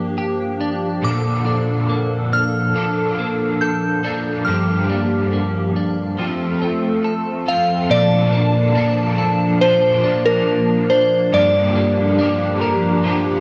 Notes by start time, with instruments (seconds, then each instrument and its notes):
Already playing: clean electric guitar G2 A#3 D4 G4, analog synth pad F3 A#3 D4 G4, synth bell D6
0.18 clean electric guitar G4
0.61 clean electric guitar D4
1.02 overdriven electric guitar A#2 D3 F3 A#3, clean electric guitar A#2, analog synth pad A4, synth bell D6
1.06 overdriven electric guitar D4 A4
1.46 clean electric guitar D4
1.89 clean electric guitar A#3
2.33 clean electric guitar D4, synth bell F6
2.74 overdriven electric guitar F3 A#3 D4 A4, clean electric guitar A4
3.19 clean electric guitar A#3
3.61 clean electric guitar A4, synth bell G6
4.03 overdriven electric guitar F3 A#3 D4 A4, clean electric guitar D4
4.45 overdriven electric guitar G2 D3 F3 A#3, clean electric guitar G2, analog synth pad A#3 G4, synth bell F6
4.49 overdriven electric guitar D4 G4
4.90 clean electric guitar D4
5.33 clean electric guitar A#3
5.76 clean electric guitar D4
6.17 overdriven electric guitar F3 C4 F4 A4, clean electric guitar F3, analog synth pad A3 C4 A4
6.61 clean electric guitar C4
7.04 clean electric guitar A4
7.46 overdriven electric guitar C4 F4 A4, clean electric guitar F4, synth bell F5
7.88 overdriven electric guitar A#2 D3 F3 A#3 D4 A4, clean electric guitar A#2, analog synth pad F3 A#3 D4 A5, synth bell D5
8.33 clean electric guitar A#3
8.75 overdriven electric guitar F3 A#3 D4 A4, clean electric guitar D4
9.18 clean electric guitar A4
9.61 overdriven electric guitar A#2 D3 F3 A#3 D4 A4, clean electric guitar F3, synth bell C5
10.04 overdriven electric guitar F3 A#3 D4, clean electric guitar D4
10.26 synth bell A#4
10.90 clean electric guitar D4, synth bell C5
11.32 overdriven electric guitar G2 D3 F3 A#3 D4 G4, clean electric guitar G2, analog synth pad F3 G4, synth bell D5
11.75 clean electric guitar A#3
12.18 overdriven electric guitar F3 A#3 D4 G4, clean electric guitar D4
12.61 clean electric guitar A#4
13.04 overdriven electric guitar G2 D3 F3 A#3 D4 G4, clean electric guitar F3